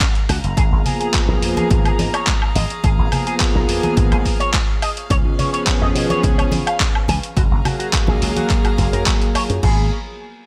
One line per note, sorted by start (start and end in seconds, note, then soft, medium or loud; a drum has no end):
0.00 0.55 F#3 medium
0.00 0.05 C#4 medium
0.00 0.54 F5 medium
0.00 0.55 G#5 medium
0.00 5.06 A#5 medium
0.00 kick loud
0.00 clap loud
0.00 closed hi-hat medium
0.15 closed hi-hat soft
0.29 0.39 C#2 medium
0.29 0.36 F#4 loud
0.29 open hi-hat loud
0.29 high woodblock medium
0.44 0.53 F#1 medium
0.44 closed hi-hat soft
0.57 0.67 G#1 loud
0.57 0.96 F3 medium
0.57 0.97 A#3 medium
0.57 0.97 B3 medium
0.57 0.62 G#4 loud
0.57 0.97 G#4 medium
0.57 5.06 G#4 medium
0.57 7.33 F5 medium
0.57 kick loud
0.57 closed hi-hat medium
0.72 0.81 G#1 loud
0.85 0.97 G#4 medium
0.85 open hi-hat loud
0.85 low conga medium
0.99 1.95 F3 loud
0.99 1.95 A#3 loud
0.99 1.96 B3 medium
0.99 1.07 G#4 loud
0.99 1.96 G#4 loud
0.99 closed hi-hat medium
1.14 kick loud
1.14 clap loud
1.14 closed hi-hat medium
1.28 1.37 B1 loud
1.28 1.33 A#4 medium
1.42 1.52 F2 medium
1.42 open hi-hat loud
1.57 1.67 G#4 loud
1.57 closed hi-hat medium
1.57 high conga loud
1.71 1.89 G#1 loud
1.71 kick loud
1.71 closed hi-hat medium
1.85 1.89 G#4 loud
1.85 closed hi-hat soft
1.85 high woodblock medium
1.99 2.08 G#2 medium
1.99 open hi-hat loud
1.99 high conga medium
2.14 2.24 C#5 loud
2.14 closed hi-hat medium
2.14 high woodblock medium
2.27 2.32 G#3 medium
2.27 kick loud
2.27 clap loud
2.27 closed hi-hat medium
2.42 high woodblock medium
2.55 2.65 G#1 medium
2.55 2.63 D#5 medium
2.55 open hi-hat loud
2.55 high conga medium
2.70 closed hi-hat soft
2.83 2.93 G#1 loud
2.83 3.23 F3 medium
2.83 3.23 A#3 medium
2.83 3.23 B3 medium
2.83 2.88 G#4 loud
2.83 3.23 G#4 medium
2.83 kick loud
2.83 closed hi-hat medium
2.98 3.07 G#1 loud
3.12 3.23 G#4 medium
3.12 open hi-hat loud
3.12 low conga medium
3.12 high woodblock medium
3.25 4.21 F3 loud
3.25 4.22 A#3 medium
3.25 4.22 B3 medium
3.25 3.34 G#4 loud
3.25 4.22 G#4 loud
3.25 closed hi-hat medium
3.40 kick loud
3.40 clap loud
3.40 closed hi-hat medium
3.55 3.64 B1 loud
3.55 3.59 A#4 medium
3.68 3.78 F2 medium
3.68 open hi-hat loud
3.83 3.94 G#4 loud
3.83 closed hi-hat medium
3.83 high conga medium
3.97 4.07 G#1 loud
3.97 kick loud
3.97 closed hi-hat medium
4.11 4.20 G#1 medium
4.11 4.16 G#4 loud
4.11 closed hi-hat soft
4.11 high woodblock medium
4.25 kick medium
4.25 open hi-hat loud
4.40 4.50 C#5 loud
4.40 closed hi-hat medium
4.54 4.58 G#3 medium
4.54 kick loud
4.54 clap loud
4.54 closed hi-hat medium
4.82 4.89 D#5 medium
4.82 open hi-hat loud
4.82 high woodblock medium
4.97 closed hi-hat medium
5.10 5.20 C#2 loud
5.10 5.50 F3 medium
5.10 5.50 B3 medium
5.10 7.34 C#4 medium
5.10 5.50 C#4 medium
5.10 5.50 G#4 medium
5.10 7.34 B4 medium
5.10 5.15 C#5 loud
5.10 kick loud
5.10 closed hi-hat medium
5.25 5.34 C#2 loud
5.39 5.50 C#5 medium
5.39 open hi-hat loud
5.39 low conga medium
5.52 6.48 F3 loud
5.52 6.48 B3 medium
5.52 6.49 C#4 loud
5.52 6.49 G#4 loud
5.52 5.60 C#5 loud
5.52 closed hi-hat medium
5.67 kick loud
5.67 clap loud
5.67 closed hi-hat medium
5.82 5.90 F2 loud
5.82 5.86 D#5 medium
5.95 6.05 B2 medium
5.95 open hi-hat loud
6.10 6.20 C#5 loud
6.10 closed hi-hat medium
6.10 high conga medium
6.23 6.42 C#2 loud
6.23 kick loud
6.23 closed hi-hat medium
6.38 6.42 C#5 loud
6.38 closed hi-hat soft
6.38 high woodblock medium
6.51 6.61 C#3 medium
6.51 open hi-hat loud
6.51 high conga medium
6.66 6.77 F5 loud
6.66 closed hi-hat medium
6.66 high woodblock medium
6.80 6.85 C#4 medium
6.80 kick loud
6.80 clap loud
6.80 closed hi-hat medium
6.95 high woodblock medium
7.08 7.18 C#2 medium
7.08 7.16 G#5 medium
7.08 open hi-hat loud
7.08 high conga medium
7.23 closed hi-hat medium
7.36 7.46 F#1 loud
7.36 7.76 F#3 medium
7.36 9.61 F#3 medium
7.36 7.76 A#3 medium
7.36 7.41 F#4 loud
7.36 7.76 G#4 medium
7.36 9.61 F5 medium
7.36 7.76 F5 medium
7.36 9.61 G#5 medium
7.36 9.61 A#5 medium
7.36 kick loud
7.36 closed hi-hat medium
7.51 7.60 F#1 loud
7.65 7.76 F#4 medium
7.65 open hi-hat loud
7.65 low conga medium
7.65 high woodblock medium
7.78 8.74 F#3 loud
7.78 8.75 A#3 medium
7.78 7.86 F#4 loud
7.78 8.75 G#4 loud
7.78 8.75 F5 medium
7.78 closed hi-hat medium
7.93 kick loud
7.93 clap loud
7.93 closed hi-hat medium
8.07 8.17 A#1 loud
8.07 8.12 G#4 medium
8.07 high conga medium
8.22 8.31 C#2 medium
8.22 open hi-hat loud
8.36 8.46 F#4 loud
8.36 closed hi-hat medium
8.36 high conga medium
8.50 kick loud
8.50 clap medium
8.50 closed hi-hat medium
8.64 8.69 F#4 loud
8.64 muted slap bass stroke soft
8.64 closed hi-hat soft
8.64 high woodblock medium
8.77 8.88 F#1 medium
8.77 9.31 F#3 medium
8.77 9.31 A#3 medium
8.77 9.32 G#4 medium
8.77 9.31 F5 medium
8.77 kick medium
8.77 open hi-hat loud
8.93 9.02 F#2 medium
8.93 9.03 A#4 loud
8.93 closed hi-hat medium
9.06 9.11 F#3 medium
9.06 kick loud
9.06 clap loud
9.06 closed hi-hat medium
9.22 closed hi-hat soft
9.35 9.42 C#5 medium
9.35 muted slap bass stroke soft
9.35 open hi-hat loud
9.35 high woodblock medium
9.50 9.58 F#2 medium
9.50 closed hi-hat medium
9.63 9.89 G#1 loud
9.63 9.89 G#4 medium
9.63 9.90 G#4 loud
9.63 9.89 F5 medium
9.63 9.89 A#5 medium
9.63 9.89 B5 medium
9.63 kick loud
9.63 crash medium